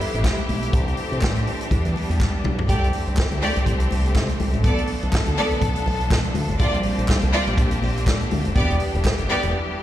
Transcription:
Already playing: string section F3 A3 B3 E4 G4
0.00 open hi-hat, muted conga
0.14 fingered electric bass A1, closed hi-hat
0.24 kick, snare, clap, high conga
0.38 closed hi-hat
0.49 fingered electric bass B1, open hi-hat, high conga
0.63 closed hi-hat
0.73 fingered electric bass C2, string section E3 C4 D4, kick, closed hi-hat, muted conga
0.88 closed hi-hat
0.97 open hi-hat
1.12 fingered electric bass C3, closed hi-hat
1.21 fingered electric bass A2, kick, snare, clap, high conga
1.36 closed hi-hat
1.47 open hi-hat
1.61 closed hi-hat
1.71 fingered electric bass E2, string section G3 B3, kick, closed hi-hat, muted conga, low conga
1.85 fingered electric bass E3, closed hi-hat
1.96 open hi-hat, muted conga
2.09 fingered electric bass E2, closed hi-hat
2.20 kick, snare, clap, high conga
2.44 fingered electric bass B1, mid tom, high conga
2.59 floor tom
2.68 fingered electric bass C2, string section E3 A3 C4 D4 G4 D5, kick, closed hi-hat, muted conga
2.84 closed hi-hat
2.93 open hi-hat
3.07 fingered electric bass C2, closed hi-hat
3.17 kick, snare, clap, high conga
3.32 fingered electric bass D2, closed hi-hat
3.42 string section A3 G4 D5, open hi-hat
3.56 fingered electric bass C2, closed hi-hat
3.66 fingered electric bass C2, kick, closed hi-hat, muted conga
3.80 closed hi-hat
3.91 fingered electric bass C2, open hi-hat, muted conga
4.06 closed hi-hat
4.15 fingered electric bass C3, kick, snare, clap, high conga
4.29 closed hi-hat
4.39 fingered electric bass C2, open hi-hat, high conga
4.53 fingered electric bass A1, closed hi-hat, high conga
4.64 fingered electric bass B1, string section F3 B3 D4 A4 D5, kick, closed hi-hat
4.78 closed hi-hat
4.87 open hi-hat
5.03 fingered electric bass B1, closed hi-hat
5.12 kick, snare, clap, high conga
5.26 fingered electric bass D2, closed hi-hat
5.38 string section B3 A4 D5, open hi-hat
5.51 fingered electric bass B1, closed hi-hat
5.61 fingered electric bass B1, kick, closed hi-hat, muted conga, low conga
5.76 closed hi-hat
5.86 fingered electric bass B1, open hi-hat, muted conga
6.01 closed hi-hat
6.10 fingered electric bass B2, kick, snare, clap, high conga
6.24 closed hi-hat
6.35 fingered electric bass D2, open hi-hat, high conga
6.49 fingered electric bass G1, closed hi-hat, high conga
6.59 fingered electric bass A#1, string section G3 A#3 C4 F4 G4 D5, kick, closed hi-hat, muted conga
6.74 closed hi-hat
6.83 open hi-hat
6.98 fingered electric bass A#1, closed hi-hat
7.08 kick, snare, clap, high conga
7.22 fingered electric bass C2, closed hi-hat
7.33 string section G3 F4 D5, open hi-hat
7.47 fingered electric bass A#1, closed hi-hat
7.58 fingered electric bass A#1, kick, closed hi-hat, muted conga
7.71 closed hi-hat
7.83 fingered electric bass A#1, open hi-hat, muted conga
7.97 closed hi-hat
8.07 fingered electric bass A#2, kick, snare, clap, high conga
8.21 closed hi-hat
8.31 fingered electric bass D2, open hi-hat, high conga
8.45 fingered electric bass F1, closed hi-hat, high conga
8.56 fingered electric bass E1, string section E3 G3 B3 G4 D5, kick, closed hi-hat, muted conga
8.70 closed hi-hat
8.80 open hi-hat
8.94 fingered electric bass E1, closed hi-hat
9.05 kick, snare, clap, high conga
9.18 fingered electric bass G1, closed hi-hat
9.29 string section B3 G4 D5, open hi-hat
9.43 fingered electric bass E1, closed hi-hat

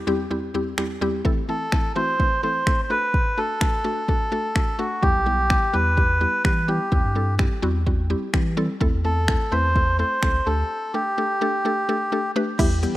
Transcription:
0.07 synth pluck E2 G3 C4 E4 G4
0.31 synth pluck E2 G3 C4 E4 G4
0.54 synth pluck E2 G3 C4 E4 G4
0.78 synth pluck E2 G3 C4 E4 G4, finger snap
1.01 synth pluck E2 G3 C4 E4 G4
1.25 synth pluck E3 A3 C4 E4 A4, kick
1.49 synth pluck E3 A3 C4 E4 A4, melodica A4
1.72 synth pluck E3 A3 C4 E4 A4, finger snap, kick
1.96 synth pluck E3 A3 C4 E4 F#4, melodica C5
2.20 synth pluck E3 A3 C4 E4 B4, kick
2.43 synth pluck E3 A3 C4 E4 A4, melodica C5
2.67 synth pluck E3 A3 C4 E4 A4, finger snap, kick
2.84 melodica C5
2.90 synth pluck A3 D4 F#4 A4, melodica B4
3.14 kick
3.37 synth pluck A3 D4 F#4 A4, melodica A4
3.61 synth pluck A3 D4 F#4 A4, finger snap, kick
3.84 synth pluck A3 D4 F#4 A4
4.08 synth pluck A3 D4 F#4 A4, kick
4.32 synth pluck A3 D4 F#4 A4
4.55 synth pluck A3 D4 F#4 A4, finger snap, kick
4.78 synth pluck A3 D4 F#4 A4, melodica F#4
5.02 sub bass E2, synth pluck G3 B3 E4 G4, melodica G4, kick
5.16 sub bass B1
5.26 synth pluck G3 B3 E4 G4
5.50 synth pluck G3 B3 E4 G4, finger snap, kick
5.73 sub bass E2, synth pluck G3 B3 E4 G4, melodica B4
5.97 synth pluck G3 B3 E4 G4, kick
6.21 synth pluck G3 B3 E4 G4
6.44 sub bass E3, synth pluck G3 B3 E4 G4, melodica B4, finger snap, kick
6.68 synth pluck G3 B3 E4 G4, melodica G4
6.92 sub bass E2, synth pluck G3 C4 E4 G4, kick
7.05 sub bass G2
7.15 synth pluck G3 C4 E4 A4
7.39 synth pluck G3 C4 E4 G4, finger snap, kick
7.62 sub bass E2, synth pluck G3 C4 E4 F#4
7.86 synth pluck G3 C4 E4 F#4, kick
8.10 synth pluck G3 C4 E4 G4
8.33 sub bass E3, synth pluck G3 C4 E4 G4, finger snap, kick
8.57 synth pluck G3 C4 E4 A4
8.81 sub bass E2, synth pluck A3 C4 E4 A4, kick
8.94 sub bass E2
9.04 synth pluck A3 C4 E4 A4, melodica A4
9.28 synth pluck A3 C4 E4 A4, finger snap, kick
9.52 sub bass E2, synth pluck A3 C4 E4 B4, melodica C5
9.76 synth pluck A3 C4 E4 A4, kick
9.99 synth pluck A3 C4 E4 A4, melodica C5
10.23 sub bass C#2, synth pluck A3 C4 E4 A4, finger snap, kick
10.46 sub bass D2, synth pluck A3 D4 G4 A4, melodica A4
10.94 synth pluck A3 D4 G4 A4, melodica G4
11.18 synth pluck A3 D4 G4 A4
11.41 synth pluck A3 D4 G4 A4
11.65 synth pluck A3 D4 G4 A4
11.89 synth pluck A3 D4 G4 A4
12.12 synth pluck A3 D4 G4 A4
12.36 synth pluck A3 D4 G4 B4
12.59 sub bass E2, ambient pad E3 G3 B3 G4, synth pluck G3 B3 E4 G4, clean electric guitar E4, kick, closed hi-hat, crash, shaker
12.72 shaker
12.83 synth pluck G3 B3 E4 G4, muted clean electric guitar stroke, closed hi-hat, shaker

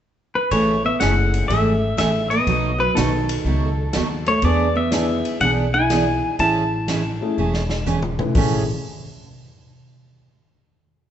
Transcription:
0.35 pedal steel guitar B4
0.51 upright bass A1, steel-string acoustic guitar C#3 E3 A3 C#4 G#4, hollow-body jazz guitar A3, pedal steel guitar C#5, kick, ride
0.85 hollow-body jazz guitar B3, pedal steel guitar E5
0.99 upright bass F#1, steel-string acoustic guitar C#3 E3 A3 C#4 G#4, upright piano A3 C#4 E4 G#4, hollow-body jazz guitar C#4, pedal steel guitar F#5, snare, hi-hat pedal, ride
1.34 ride
1.48 upright bass G#1, steel-string acoustic guitar C#3 E3 A3 C#4 G#4, hollow-body jazz guitar A3, pedal steel guitar E5, kick, ride
1.97 upright bass A1, steel-string acoustic guitar C#3 E3 A3 C#4 G#4, hollow-body jazz guitar A3, pedal steel guitar E5, snare, hi-hat pedal, ride
2.30 hollow-body jazz guitar B3, pedal steel guitar D#5, ride
2.47 upright bass B1, steel-string acoustic guitar B2 F#3 A3 D#4 F#4, kick, ride
2.78 hollow-body jazz guitar F#3, pedal steel guitar B4
2.94 upright bass B1, steel-string acoustic guitar B2 F#3 A3 D#4 F#4, hollow-body jazz guitar D#3, upright piano B3 D#4 F#4 A4, pedal steel guitar A4, snare, hi-hat pedal, ride
3.29 ride
3.45 upright bass C#2, steel-string acoustic guitar B2 F#3 A3 D#4 F#4, kick
3.93 upright bass D#2, steel-string acoustic guitar B2 F#3 A3 D#4 F#4, snare, hi-hat pedal, ride
4.26 hollow-body jazz guitar A3, pedal steel guitar C#5, ride
4.42 upright bass E2, steel-string acoustic guitar E3 B3 D4 G#4, hollow-body jazz guitar B3, pedal steel guitar D5, kick, ride
4.75 hollow-body jazz guitar B3, pedal steel guitar E5
4.91 steel-string acoustic guitar E3 B3 D4 G#4, upright piano B3 D4 E4 G#4, snare, hi-hat pedal, ride
5.25 ride
5.41 upright bass B1, steel-string acoustic guitar E3 B3 D4 G#4, hollow-body jazz guitar D4, pedal steel guitar F#5, kick, ride
5.74 hollow-body jazz guitar E4, pedal steel guitar G#5
5.90 steel-string acoustic guitar E3 B3 D4 G#4, snare, hi-hat pedal, ride
6.39 upright bass A1, steel-string acoustic guitar C#3 E3 A3 C#4 G#4, hollow-body jazz guitar E4, pedal steel guitar A5, kick, ride
6.88 steel-string acoustic guitar C#3 E3 A3 C#4 G#4, snare, hi-hat pedal, ride
7.21 upright piano A3 C#4 E4 G#4
7.38 upright bass E1, steel-string acoustic guitar C#3 E3 A3 C#4 G#4
7.54 snare
7.70 snare
7.86 steel-string acoustic guitar C#3 E3 A3 C#4 G#4, floor tom, hi-hat pedal
8.02 mid tom
8.18 upright piano A3 C#4 E4 B4, mid tom
8.35 upright bass A1, steel-string acoustic guitar A2 C#3 E3 A3 C#4 G#4, upright piano A3 C#4 E4 G#4, kick, open hi-hat

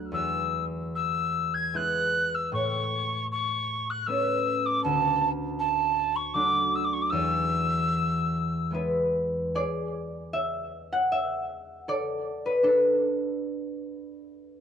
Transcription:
Already playing: harp D2 F#3 A3 D4
0.12 harp E2, tin whistle E6
0.95 tin whistle E6
1.54 tin whistle G#6
1.74 harp G#3 B3 E4, tin whistle F#6
2.35 tin whistle E6
2.52 harp A2, tin whistle C#6
3.32 tin whistle C#6
3.90 tin whistle F#6
4.06 harp A3 B3 C#4, tin whistle E6
4.66 tin whistle D6
4.84 harp D2, tin whistle A5
5.59 tin whistle A5
6.16 tin whistle C#6
6.34 harp F#3 A3 D4, tin whistle D6
6.75 tin whistle E6
6.84 tin whistle D6
6.93 tin whistle C#6
7.02 tin whistle D6
7.10 harp E2, tin whistle E6
8.71 harp G#3 B3 E4 B4
9.55 harp G#4 D5
10.33 harp E5
10.93 harp F#5
11.12 harp E5
11.88 harp A4 D5
12.46 harp B4
12.63 harp D4 A4

